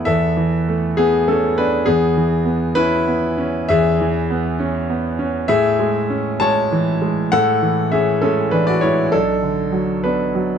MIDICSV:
0, 0, Header, 1, 2, 480
1, 0, Start_track
1, 0, Key_signature, 3, "major"
1, 0, Tempo, 598802
1, 57, Time_signature, 6, 3, 24, 8
1, 1974, Tempo, 618557
1, 2934, Tempo, 589391
1, 4374, Tempo, 621762
1, 5334, Tempo, 603622
1, 7734, Tempo, 630915
1, 8381, End_track
2, 0, Start_track
2, 0, Title_t, "Grand piano"
2, 0, Program_c, 0, 0
2, 0, Control_c, 0, 64, 127
2, 0, Note_on_c, 0, 59, 47
2, 42, Note_on_c, 0, 76, 89
2, 50, Note_on_c, 0, 40, 59
2, 51, Note_on_c, 0, 69, 70
2, 69, Control_c, 0, 64, 0
2, 200, Control_c, 0, 64, 127
2, 206, Note_off_c, 0, 59, 0
2, 296, Note_on_c, 0, 52, 47
2, 549, Note_on_c, 0, 57, 48
2, 689, Note_off_c, 0, 52, 0
2, 754, Note_off_c, 0, 69, 0
2, 778, Note_on_c, 0, 68, 88
2, 782, Note_off_c, 0, 76, 0
2, 786, Note_on_c, 0, 59, 67
2, 934, Note_off_c, 0, 57, 0
2, 1010, Note_off_c, 0, 59, 0
2, 1023, Note_off_c, 0, 68, 0
2, 1025, Note_on_c, 0, 69, 72
2, 1028, Note_on_c, 0, 57, 50
2, 1033, Note_on_c, 0, 61, 53
2, 1251, Note_off_c, 0, 61, 0
2, 1263, Note_off_c, 0, 69, 0
2, 1264, Note_on_c, 0, 71, 83
2, 1267, Note_on_c, 0, 59, 47
2, 1271, Note_on_c, 0, 62, 68
2, 1406, Note_off_c, 0, 57, 0
2, 1465, Note_off_c, 0, 40, 0
2, 1484, Note_off_c, 0, 59, 0
2, 1487, Note_off_c, 0, 62, 0
2, 1487, Note_on_c, 0, 68, 85
2, 1496, Note_on_c, 0, 40, 59
2, 1496, Note_on_c, 0, 59, 66
2, 1499, Note_off_c, 0, 71, 0
2, 1512, Control_c, 0, 64, 0
2, 1644, Control_c, 0, 64, 127
2, 1740, Note_on_c, 0, 52, 47
2, 1955, Note_off_c, 0, 59, 0
2, 1967, Note_on_c, 0, 59, 53
2, 2115, Note_off_c, 0, 52, 0
2, 2198, Note_on_c, 0, 71, 102
2, 2201, Note_off_c, 0, 68, 0
2, 2202, Note_on_c, 0, 61, 57
2, 2206, Note_on_c, 0, 64, 74
2, 2346, Note_off_c, 0, 59, 0
2, 2450, Note_on_c, 0, 59, 48
2, 2592, Note_off_c, 0, 61, 0
2, 2684, Note_on_c, 0, 61, 54
2, 2840, Note_off_c, 0, 59, 0
2, 2901, Note_off_c, 0, 40, 0
2, 2903, Note_off_c, 0, 64, 0
2, 2923, Note_on_c, 0, 76, 89
2, 2929, Note_off_c, 0, 71, 0
2, 2932, Note_on_c, 0, 40, 67
2, 2936, Note_on_c, 0, 68, 74
2, 2948, Control_c, 0, 64, 0
2, 3076, Note_off_c, 0, 61, 0
2, 3088, Control_c, 0, 64, 127
2, 3186, Note_on_c, 0, 52, 52
2, 3425, Note_on_c, 0, 59, 57
2, 3561, Note_off_c, 0, 52, 0
2, 3620, Note_off_c, 0, 68, 0
2, 3646, Note_off_c, 0, 76, 0
2, 3662, Note_on_c, 0, 61, 57
2, 3800, Note_off_c, 0, 59, 0
2, 3910, Note_on_c, 0, 59, 51
2, 4039, Note_off_c, 0, 61, 0
2, 4147, Note_on_c, 0, 61, 58
2, 4286, Note_off_c, 0, 59, 0
2, 4340, Note_off_c, 0, 40, 0
2, 4382, Note_off_c, 0, 61, 0
2, 4384, Note_on_c, 0, 76, 98
2, 4387, Control_c, 0, 64, 0
2, 4391, Note_on_c, 0, 45, 66
2, 4392, Note_on_c, 0, 68, 75
2, 4498, Control_c, 0, 64, 127
2, 4626, Note_on_c, 0, 56, 52
2, 4862, Note_on_c, 0, 61, 53
2, 5010, Note_off_c, 0, 56, 0
2, 5076, Note_off_c, 0, 68, 0
2, 5092, Note_on_c, 0, 81, 99
2, 5098, Note_on_c, 0, 56, 53
2, 5104, Note_off_c, 0, 76, 0
2, 5105, Note_on_c, 0, 73, 80
2, 5243, Note_off_c, 0, 61, 0
2, 5344, Note_on_c, 0, 52, 52
2, 5476, Note_off_c, 0, 56, 0
2, 5577, Note_on_c, 0, 56, 46
2, 5721, Note_off_c, 0, 52, 0
2, 5783, Note_off_c, 0, 73, 0
2, 5788, Note_off_c, 0, 45, 0
2, 5808, Note_off_c, 0, 81, 0
2, 5816, Note_on_c, 0, 78, 102
2, 5824, Control_c, 0, 64, 0
2, 5825, Note_on_c, 0, 45, 65
2, 5825, Note_on_c, 0, 69, 82
2, 5938, Control_c, 0, 64, 127
2, 5958, Note_off_c, 0, 56, 0
2, 6060, Note_on_c, 0, 52, 49
2, 6265, Note_off_c, 0, 69, 0
2, 6292, Note_off_c, 0, 78, 0
2, 6292, Note_on_c, 0, 76, 69
2, 6297, Note_on_c, 0, 61, 46
2, 6300, Note_on_c, 0, 68, 56
2, 6438, Note_off_c, 0, 52, 0
2, 6518, Note_off_c, 0, 68, 0
2, 6527, Note_off_c, 0, 61, 0
2, 6530, Note_off_c, 0, 76, 0
2, 6530, Note_on_c, 0, 69, 74
2, 6537, Note_on_c, 0, 56, 46
2, 6539, Note_on_c, 0, 61, 63
2, 6756, Note_off_c, 0, 61, 0
2, 6767, Note_on_c, 0, 71, 77
2, 6768, Note_off_c, 0, 69, 0
2, 6776, Note_on_c, 0, 62, 63
2, 6778, Note_on_c, 0, 52, 43
2, 6883, Note_off_c, 0, 62, 0
2, 6886, Note_off_c, 0, 71, 0
2, 6890, Note_on_c, 0, 74, 82
2, 6903, Note_on_c, 0, 66, 61
2, 6914, Note_off_c, 0, 56, 0
2, 7003, Note_on_c, 0, 73, 83
2, 7007, Note_off_c, 0, 66, 0
2, 7008, Note_off_c, 0, 74, 0
2, 7010, Note_on_c, 0, 56, 45
2, 7019, Note_on_c, 0, 64, 58
2, 7156, Note_off_c, 0, 52, 0
2, 7222, Note_off_c, 0, 45, 0
2, 7238, Note_off_c, 0, 64, 0
2, 7246, Note_off_c, 0, 73, 0
2, 7248, Note_on_c, 0, 69, 86
2, 7249, Note_off_c, 0, 56, 0
2, 7250, Note_on_c, 0, 35, 57
2, 7254, Note_on_c, 0, 62, 70
2, 7263, Control_c, 0, 64, 0
2, 7379, Control_c, 0, 64, 127
2, 7498, Note_on_c, 0, 50, 43
2, 7730, Note_on_c, 0, 54, 43
2, 7879, Note_off_c, 0, 50, 0
2, 7944, Note_off_c, 0, 62, 0
2, 7967, Note_on_c, 0, 71, 64
2, 7971, Note_off_c, 0, 69, 0
2, 7975, Note_on_c, 0, 59, 41
2, 7977, Note_on_c, 0, 62, 50
2, 8113, Note_off_c, 0, 54, 0
2, 8207, Note_on_c, 0, 54, 43
2, 8360, Note_off_c, 0, 59, 0
2, 8381, Note_off_c, 0, 35, 0
2, 8381, Note_off_c, 0, 54, 0
2, 8381, Note_off_c, 0, 62, 0
2, 8381, Note_off_c, 0, 71, 0
2, 8381, End_track
0, 0, End_of_file